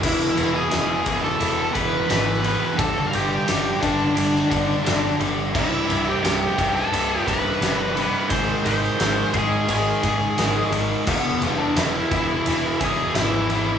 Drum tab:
CC |x---------------|----------------|x---------------|----------------|
RD |--x-x-x-x-x-x-x-|x-x-x-x-x-x-x-x-|--x-x-x-x-x-x-x-|x-x-x-x-x-x-x-x-|
SD |----o-------o---|----o----o--o---|----o-------o---|---oo-------o---|
BD |o-----o---o-----|o-----o---o-----|o-----o---o-----|o-----o---o-----|

CC |x---------------|
RD |--x-x-x-x-x-x-x-|
SD |----o-------o---|
BD |o-----o---o-----|